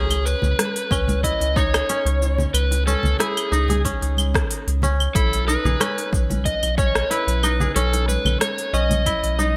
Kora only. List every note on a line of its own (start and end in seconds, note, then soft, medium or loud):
0.00 0.91 C#4 loud
0.00 0.19 E4 medium
0.00 0.42 F#4 medium
0.00 0.82 G#4 medium
0.91 1.89 C#4 medium
1.23 1.62 E4 medium
1.56 3.19 D#4 loud
1.74 3.10 G#4 medium
1.90 2.87 C#4 loud
2.87 3.84 C#4 loud
3.19 3.58 E4 medium
3.52 5.14 D#4 medium
3.70 5.06 G#4 medium
3.85 4.83 C#4 loud
4.83 5.80 C#4 loud
5.15 5.54 E4 medium
5.48 7.10 D#4 loud
5.65 7.02 G#4 medium
5.80 6.77 C#4 loud
6.78 7.75 C#4 loud
7.11 7.49 E4 medium
7.43 9.06 D#4 medium
7.60 8.97 G#4 medium
7.76 8.73 C#4 loud
8.74 9.57 C#4 loud
9.06 9.45 E4 medium
9.39 9.57 D#4 loud